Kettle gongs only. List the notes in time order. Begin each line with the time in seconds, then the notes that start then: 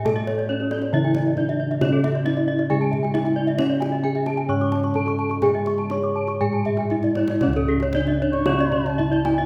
Already playing: A2
0.06 A4
0.50 D4
0.93 C#3
1.38 D4
1.82 C#4
2.26 D4
2.71 C#3
3.15 D4
3.59 C#4
4.04 D4
4.49 G#2
4.96 D4
5.42 G#4
5.91 D4
6.41 A2
6.92 D4
7.43 C#4
7.48 C#2
7.95 D4
9.00 D4